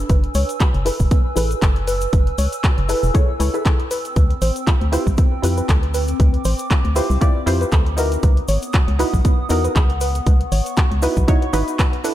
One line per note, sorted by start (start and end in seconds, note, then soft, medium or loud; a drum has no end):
0.00 0.83 E4 medium
0.00 0.83 G#4 medium
0.00 0.83 A4 medium
0.00 0.84 B4 medium
0.00 3.87 B4 medium
0.00 3.87 G#5 medium
0.00 5.90 E6 medium
0.09 0.28 F#1 loud
0.09 0.13 B4 medium
0.09 kick loud
0.09 closed hi-hat medium
0.09 shaker soft
0.24 closed hi-hat soft
0.35 0.45 C#2 loud
0.35 0.38 C#5 loud
0.35 open hi-hat loud
0.35 shaker medium
0.49 closed hi-hat soft
0.49 shaker medium
0.60 0.63 F#4 loud
0.60 kick loud
0.60 clap loud
0.60 closed hi-hat medium
0.60 shaker soft
0.74 0.91 F#1 medium
0.74 closed hi-hat soft
0.85 1.02 E4 medium
0.85 1.02 G#4 medium
0.85 1.02 A4 medium
0.85 0.89 B4 loud
0.85 1.03 B4 loud
0.85 open hi-hat loud
0.85 shaker medium
0.99 1.08 E1 loud
0.99 kick medium
0.99 shaker medium
1.11 1.16 B3 medium
1.11 kick loud
1.11 closed hi-hat medium
1.11 shaker soft
1.36 1.55 A1 medium
1.36 2.86 E4 medium
1.36 2.86 G#4 medium
1.36 2.87 A4 medium
1.36 1.42 B4 medium
1.36 2.87 B4 medium
1.36 open hi-hat loud
1.36 shaker medium
1.51 closed hi-hat soft
1.51 shaker medium
1.62 2.07 F#1 medium
1.62 1.70 A4 medium
1.62 kick loud
1.62 clap loud
1.62 closed hi-hat medium
1.62 shaker soft
1.76 closed hi-hat soft
1.87 1.91 B4 loud
1.87 open hi-hat loud
1.87 shaker loud
2.01 closed hi-hat soft
2.01 shaker medium
2.13 2.31 F#1 loud
2.13 2.16 B4 medium
2.13 kick loud
2.13 closed hi-hat medium
2.13 shaker soft
2.27 closed hi-hat soft
2.38 2.48 C#2 loud
2.38 2.41 C#5 loud
2.38 open hi-hat loud
2.38 shaker medium
2.53 closed hi-hat soft
2.53 shaker medium
2.64 2.67 F#4 loud
2.64 kick loud
2.64 clap loud
2.64 closed hi-hat medium
2.64 shaker soft
2.78 2.94 F#1 medium
2.78 closed hi-hat soft
2.89 3.12 E4 medium
2.89 3.12 G#4 medium
2.89 3.12 A4 medium
2.89 2.92 B4 loud
2.89 3.12 B4 medium
2.89 open hi-hat loud
2.89 shaker medium
3.03 3.11 E1 loud
3.03 shaker soft
3.14 3.20 B3 medium
3.14 3.31 E4 medium
3.14 3.31 G#4 medium
3.14 3.31 A4 medium
3.14 3.31 C#5 loud
3.14 kick loud
3.14 closed hi-hat medium
3.14 shaker soft
3.40 3.50 C#2 loud
3.40 3.51 E4 medium
3.40 3.51 G#4 medium
3.40 3.51 A4 medium
3.40 3.45 B4 medium
3.40 3.51 C#5 medium
3.40 open hi-hat loud
3.40 shaker medium
3.54 3.89 E4 medium
3.54 3.89 G#4 medium
3.54 3.90 A4 medium
3.54 3.90 B4 medium
3.54 closed hi-hat soft
3.54 shaker soft
3.65 3.73 A4 medium
3.65 kick loud
3.65 clap loud
3.65 closed hi-hat medium
3.65 shaker soft
3.80 closed hi-hat soft
3.91 8.19 C4 medium
3.91 3.94 B4 loud
3.91 8.19 G5 medium
3.91 open hi-hat loud
3.91 shaker medium
4.05 closed hi-hat soft
4.05 shaker soft
4.16 4.35 D2 loud
4.16 4.19 B4 medium
4.16 kick loud
4.16 closed hi-hat medium
4.16 shaker soft
4.30 closed hi-hat soft
4.42 4.51 A1 loud
4.42 4.45 C5 loud
4.42 open hi-hat loud
4.42 shaker medium
4.56 closed hi-hat soft
4.56 shaker medium
4.67 4.70 F4 loud
4.67 kick loud
4.67 clap loud
4.67 closed hi-hat medium
4.67 shaker soft
4.81 4.98 D2 medium
4.81 closed hi-hat soft
4.92 5.09 E4 medium
4.92 5.09 F4 medium
4.92 5.09 G4 medium
4.92 4.96 B4 medium
4.92 5.09 C5 loud
4.92 open hi-hat loud
4.92 shaker loud
5.07 5.14 C2 loud
5.07 kick medium
5.07 shaker soft
5.17 5.23 B3 medium
5.17 kick loud
5.17 closed hi-hat medium
5.17 shaker soft
5.42 5.62 F2 medium
5.42 6.93 E4 medium
5.42 6.93 F4 medium
5.42 6.93 G4 medium
5.42 5.48 B4 medium
5.42 6.94 B4 medium
5.42 open hi-hat loud
5.42 shaker medium
5.57 5.62 B4 medium
5.57 closed hi-hat soft
5.57 shaker soft
5.69 6.14 D2 medium
5.69 5.76 A4 medium
5.69 kick loud
5.69 clap loud
5.69 closed hi-hat medium
5.69 shaker soft
5.83 closed hi-hat soft
5.94 5.97 B4 loud
5.94 8.21 D6 medium
5.94 open hi-hat loud
5.94 shaker medium
6.08 closed hi-hat soft
6.08 shaker medium
6.20 6.38 D2 loud
6.20 6.23 B4 medium
6.20 kick loud
6.20 closed hi-hat medium
6.20 shaker soft
6.34 closed hi-hat soft
6.45 6.55 A1 loud
6.45 6.48 C5 loud
6.45 open hi-hat loud
6.45 shaker medium
6.59 closed hi-hat soft
6.59 shaker soft
6.71 6.74 F4 loud
6.71 kick loud
6.71 clap loud
6.71 closed hi-hat medium
6.71 shaker soft
6.85 7.01 D2 medium
6.85 closed hi-hat soft
6.95 7.18 E4 medium
6.95 7.19 F4 medium
6.95 7.19 G4 medium
6.95 6.99 B4 loud
6.95 7.19 C5 medium
6.95 open hi-hat loud
6.95 shaker medium
7.10 7.18 C2 loud
7.10 shaker soft
7.21 7.26 B3 medium
7.21 7.38 E4 loud
7.21 7.38 F4 medium
7.21 7.38 G4 medium
7.21 7.38 D5 loud
7.21 kick loud
7.21 closed hi-hat medium
7.21 shaker soft
7.46 7.65 F2 medium
7.46 7.95 E4 medium
7.46 7.95 F4 medium
7.46 7.95 G4 medium
7.46 7.52 B4 medium
7.46 7.95 C5 loud
7.46 open hi-hat loud
7.46 shaker medium
7.61 7.65 B4 medium
7.61 closed hi-hat soft
7.61 shaker soft
7.72 8.17 D2 medium
7.72 7.80 A4 medium
7.72 kick loud
7.72 clap loud
7.72 closed hi-hat medium
7.72 shaker soft
7.86 closed hi-hat soft
7.97 8.96 D#4 medium
7.97 8.97 E4 medium
7.97 8.97 F#4 medium
7.97 8.97 A#4 medium
7.97 8.01 B4 loud
7.97 open hi-hat loud
7.97 shaker medium
8.12 closed hi-hat medium
8.12 shaker soft
8.23 8.41 C#2 loud
8.23 12.14 B3 medium
8.23 8.26 B4 medium
8.23 12.14 F#5 medium
8.23 10.25 D#6 medium
8.23 kick loud
8.23 closed hi-hat medium
8.23 shaker soft
8.37 closed hi-hat soft
8.48 8.58 G#1 loud
8.48 8.52 C#5 loud
8.48 open hi-hat loud
8.48 shaker medium
8.62 closed hi-hat medium
8.62 shaker soft
8.73 8.77 F#4 loud
8.73 kick loud
8.73 clap loud
8.73 closed hi-hat medium
8.73 shaker soft
8.88 9.04 C#2 medium
8.88 closed hi-hat soft
8.99 9.16 D#4 medium
8.99 9.16 E4 medium
8.99 9.16 F#4 medium
8.99 9.02 B4 loud
8.99 9.16 B4 loud
8.99 open hi-hat loud
8.99 shaker medium
9.14 9.21 B1 loud
9.14 kick medium
9.14 shaker soft
9.25 9.30 B3 medium
9.25 kick loud
9.25 closed hi-hat medium
9.25 shaker soft
9.49 9.68 E2 medium
9.49 11.00 D#4 medium
9.49 11.00 E4 medium
9.49 11.00 F#4 medium
9.49 11.01 A#4 medium
9.49 9.55 B4 medium
9.49 open hi-hat loud
9.49 shaker medium
9.64 9.68 B4 medium
9.64 closed hi-hat soft
9.64 shaker medium
9.76 10.21 C#2 medium
9.76 9.83 G#4 medium
9.76 kick loud
9.76 clap loud
9.76 closed hi-hat medium
9.76 shaker soft
9.90 closed hi-hat soft
10.01 10.04 B4 loud
10.01 open hi-hat medium
10.01 shaker medium
10.15 closed hi-hat soft
10.15 shaker soft
10.27 10.45 C#2 loud
10.27 10.30 B4 medium
10.27 12.14 C#6 medium
10.27 kick loud
10.27 closed hi-hat medium
10.27 shaker soft
10.41 closed hi-hat soft
10.52 10.62 G#1 loud
10.52 10.55 C#5 loud
10.52 open hi-hat loud
10.52 shaker medium
10.66 closed hi-hat medium
10.66 shaker soft
10.77 10.80 F#4 loud
10.77 kick loud
10.77 clap loud
10.77 closed hi-hat medium
10.77 shaker soft
10.91 11.08 C#2 medium
10.91 closed hi-hat soft
11.02 11.25 D#4 medium
11.02 11.25 E4 medium
11.02 11.26 F#4 medium
11.02 11.06 B4 loud
11.02 11.26 B4 medium
11.02 open hi-hat loud
11.02 shaker medium
11.17 11.25 B1 loud
11.17 kick medium
11.17 closed hi-hat soft
11.17 shaker soft
11.28 11.33 B3 medium
11.28 11.44 D#4 medium
11.28 11.45 E4 medium
11.28 11.45 F#4 medium
11.28 11.45 C#5 loud
11.28 kick loud
11.28 closed hi-hat medium
11.28 shaker soft
11.42 closed hi-hat soft
11.53 11.63 G#1 loud
11.53 12.02 D#4 medium
11.53 12.02 E4 medium
11.53 12.02 F#4 medium
11.53 11.57 B4 medium
11.53 12.02 B4 loud
11.53 open hi-hat loud
11.53 shaker medium
11.68 closed hi-hat soft
11.68 shaker medium
11.79 11.87 B4 medium
11.79 kick loud
11.79 clap loud
11.79 closed hi-hat medium
11.79 shaker soft
11.93 closed hi-hat soft
12.04 12.14 D4 medium
12.04 12.14 E4 medium
12.04 12.14 A4 medium
12.04 12.09 B4 loud
12.04 12.14 B4 medium
12.04 open hi-hat loud
12.04 shaker medium